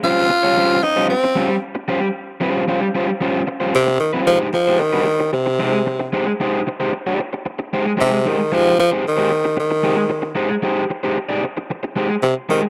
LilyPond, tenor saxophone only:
\new Staff \with { instrumentName = "Tenor saxophone" } { \clef bass \time 4/4 \key aes \major \tempo 4 = 113 f'4. ees'8 c'4 r4 | r2. c8 ees8 | f8 f8 ees4 c4. r8 | r2. c8 ees8 |
f8 f8 ees4 ees4. r8 | r2. c8 ees8 | }